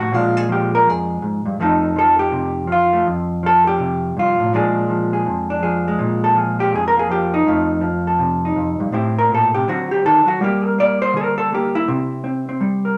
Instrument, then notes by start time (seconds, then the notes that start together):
hollow-body jazz guitar
Already playing: F3 D#4
0.00 A2 F#4
0.12 A#2 F3 G#3 D4 F4
0.37 G#4
0.48 F3 G4
0.75 A#4
0.86 F2 G#4
1.22 G#2
1.46 G2
1.60 F2 F3 A3 D#4 A4
1.96 F3 A4
2.19 G4
2.32 C3
2.67 F3
2.72 F4
2.93 A3
3.07 F2
3.43 F3 A4
3.67 G4
3.79 C3
4.17 G2 F4
4.40 A2
4.53 A#2 F3 G#3 D4 G#4
4.90 F3
5.13 G#4
5.26 F2
5.50 D4
5.62 F3 G#4
5.88 G#3
5.99 A#2
6.24 A4
6.35 F3
6.39 G#4
6.60 G4
6.72 F2 G#4
6.88 A#4
6.97 A#3 G#4
7.10 F3 G4
7.34 D#4
7.47 F2 F3 A3
7.81 F3
8.07 A4
8.19 C3
8.45 D#4
8.56 F2
8.80 G2
8.92 A2 C4 E4 G4
9.19 A#4
9.29 A#2
9.34 A4
9.55 C3 G4
9.68 D3 F#3 C4 F#4
9.91 G4
10.05 D#3 A4
10.26 F#3 F#4
10.41 G3 A#3 G4
10.65 A#4
10.78 A#3 D5
11.02 C5
11.13 D3 A#4
11.38 A4
11.52 A#3 G4
11.75 E4
11.88 C3 C4
12.24 C4
12.49 C4
12.61 G3
12.85 A#4